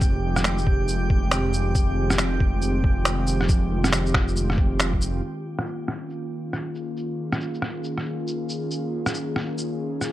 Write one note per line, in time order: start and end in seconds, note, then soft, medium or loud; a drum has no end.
0.00 5.22 F1 medium
0.00 10.12 D#3 medium
0.00 5.23 G#3 medium
0.00 5.23 C4 medium
0.00 10.12 F4 medium
0.00 5.23 G4 medium
0.00 5.24 G4 medium
0.00 5.24 G5 medium
0.00 kick loud
0.00 shaker medium
0.36 cross-stick medium
0.36 shaker medium
0.44 finger snap loud
0.44 shaker medium
0.58 shaker soft
0.67 kick loud
0.88 shaker medium
1.10 kick loud
1.31 finger snap loud
1.31 shaker medium
1.53 shaker medium
1.75 kick loud
1.75 shaker medium
2.10 cross-stick medium
2.10 shaker medium
2.18 finger snap loud
2.18 shaker medium
2.40 kick loud
2.62 shaker medium
2.84 kick loud
3.05 finger snap loud
3.05 shaker medium
3.27 shaker medium
3.41 cross-stick soft
3.49 kick loud
3.49 shaker medium
3.84 cross-stick medium
3.84 shaker medium
3.93 finger snap loud
3.93 shaker medium
4.06 shaker soft
4.14 finger snap medium
4.14 kick loud
4.14 cross-stick medium
4.28 shaker soft
4.36 shaker medium
4.50 cross-stick soft
4.58 kick loud
4.80 finger snap loud
4.80 shaker medium
4.93 kick medium
5.01 shaker medium
5.23 shaker medium
5.33 10.12 A#3 medium
5.39 10.12 C#4 medium
5.59 cross-stick medium
5.59 shaker medium
5.67 shaker medium
5.88 cross-stick soft
6.02 10.12 G#4 medium
6.10 shaker soft
6.53 cross-stick soft
6.53 shaker medium
6.75 shaker medium
6.97 shaker medium
7.32 cross-stick medium
7.32 shaker medium
7.41 shaker medium
7.54 shaker soft
7.62 cross-stick soft
7.84 shaker medium
7.98 cross-stick soft
8.27 shaker medium
8.49 shaker medium
8.71 shaker medium
9.06 cross-stick medium
9.06 shaker medium
9.14 shaker medium
9.36 cross-stick soft
9.58 shaker medium
10.01 cross-stick soft
10.01 shaker medium